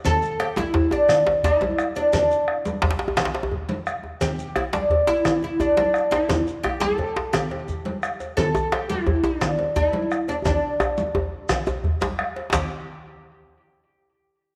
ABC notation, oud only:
X:1
M:12/8
L:1/8
Q:3/8=115
K:Dmix
V:1 name="Oud"
A2 G E2 D3 E3 D | D6 z6 | G2 E D2 E2 E D D2 E- | E z G A3 G4- G z |
A2 G E2 D3 E3 D | D6 z6 | G z8 z3 |]